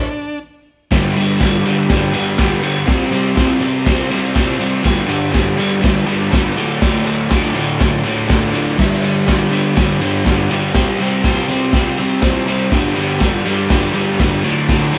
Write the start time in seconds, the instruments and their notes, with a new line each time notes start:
Already playing: transistor combo organ D4
0.91 overdriven electric guitar G2 D3 G3, transistor combo organ G4 B4 D5, kick, snare, crash
1.16 overdriven electric guitar G2 D3 G3, ride
1.40 overdriven electric guitar G2 D3 G3, kick, snare, clap, ride
1.65 overdriven electric guitar G2 D3 G3, ride
1.89 overdriven electric guitar G2 D3 G3, kick, snare, ride
2.14 overdriven electric guitar G2 D3 G3, ride
2.38 overdriven electric guitar G2 D3 G3, kick, snare, clap, ride
2.62 overdriven electric guitar G2 D3 G3, ride
2.86 overdriven electric guitar C3 G3 C4, transistor combo organ G4 C5 E5, kick, snare, ride
3.11 overdriven electric guitar C3 G3 C4, ride
3.36 overdriven electric guitar C3 G3 C4, kick, snare, clap, ride
3.60 overdriven electric guitar C3 G3 C4, ride
3.85 overdriven electric guitar C3 G3 C4, kick, snare, ride
4.10 overdriven electric guitar C3 G3 C4, ride
4.35 overdriven electric guitar C3 G3 C4, kick, snare, clap, ride
4.59 overdriven electric guitar C3 G3 C4, ride
4.82 overdriven electric guitar G2 D3 G3, transistor combo organ G4 B4 D5, kick, snare, ride
5.07 overdriven electric guitar G2 D3 G3, ride
5.31 overdriven electric guitar G2 D3 G3, kick, snare, clap, ride
5.57 overdriven electric guitar G2 D3 G3, ride
5.81 overdriven electric guitar G2 D3 G3, kick, snare, ride
6.06 overdriven electric guitar G2 D3 G3, ride
6.31 overdriven electric guitar G2 D3 G3, kick, snare, clap, ride
6.57 overdriven electric guitar D2 A2 D3, transistor combo organ F#4 A4 D5, ride
6.82 overdriven electric guitar D2 A2 D3, kick, snare, ride
7.04 overdriven electric guitar D2 A2 D3, ride
7.30 overdriven electric guitar D2 A2 D3, kick, snare, clap, ride
7.54 overdriven electric guitar D2 A2 D3, ride
7.79 overdriven electric guitar D2 A2 D3, kick, snare, ride
8.04 overdriven electric guitar D2 A2 D3, ride
8.27 overdriven electric guitar D2 A2 D3, kick, snare, clap, ride
8.52 overdriven electric guitar D2 A2 D3, ride
8.77 overdriven electric guitar G2 D3 G3, transistor combo organ G4 B4 D5, kick, snare, crash
9.02 overdriven electric guitar G2 D3 G3, ride
9.27 overdriven electric guitar G2 D3 G3, kick, snare, clap, ride
9.51 overdriven electric guitar G2 D3 G3, ride
9.76 overdriven electric guitar G2 D3 G3, kick, snare, ride
10.01 overdriven electric guitar G2 D3 G3, ride
10.25 overdriven electric guitar G2 D3 G3, kick, snare, clap, ride
10.50 overdriven electric guitar G2 D3 G3, ride
10.74 overdriven electric guitar C3 G3 C4, transistor combo organ G4 C5 E5, kick, snare, ride
10.99 overdriven electric guitar C3 G3 C4, ride
11.22 overdriven electric guitar C3 G3 C4, kick, snare, clap, ride
11.48 overdriven electric guitar C3 G3 C4, ride
11.73 overdriven electric guitar C3 G3 C4, kick, snare, ride
11.97 overdriven electric guitar C3 G3 C4, ride
12.20 overdriven electric guitar C3 G3 C4, kick, snare, clap, ride
12.47 overdriven electric guitar C3 G3 C4, ride
12.67 overdriven electric guitar G2, transistor combo organ G4 B4 D5
12.72 overdriven electric guitar D3 G3, kick, snare, ride
12.95 overdriven electric guitar G2 D3 G3, ride
13.20 overdriven electric guitar G2 D3 G3, kick, snare, clap, ride
13.46 overdriven electric guitar G2 D3 G3, ride
13.70 overdriven electric guitar G2 D3 G3, kick, snare, ride
13.93 overdriven electric guitar G2 D3 G3, ride
14.18 overdriven electric guitar G2 D3 G3, kick, snare, clap, ride
14.41 overdriven electric guitar D2, transistor combo organ F#4 A4 D5, ride
14.45 overdriven electric guitar A2 D3
14.69 overdriven electric guitar D2 A2 D3, kick, snare, ride
14.92 overdriven electric guitar D2 A2 D3, ride